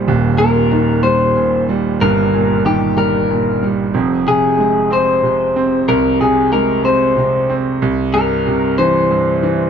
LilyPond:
<<
  \new Staff \with { instrumentName = "Clean electric guitar" } { \time 6/8 \key f \minor \tempo 4. = 62 r8 bes'4 c''4 r8 | bes'4 g'8 bes'4 r8 | r8 aes'4 c''4. | bes'8 aes'8 bes'8 c''4 r8 |
r8 bes'4 c''4. | }
  \new Staff \with { instrumentName = "Grand piano" } { \clef bass \time 6/8 \key f \minor <ees,, ees, bes, g>8 bes,8 ees8 g8 bes,8 g8 | <g,, g,>8 bes,8 ees8 g8 bes,8 g8 | <f,, f,>8 c8 aes8 c'8 c8 c'8 | c,8 c8 aes8 c'8 c8 c'8 |
c,8 g,8 c8 e8 g,8 e8 | }
>>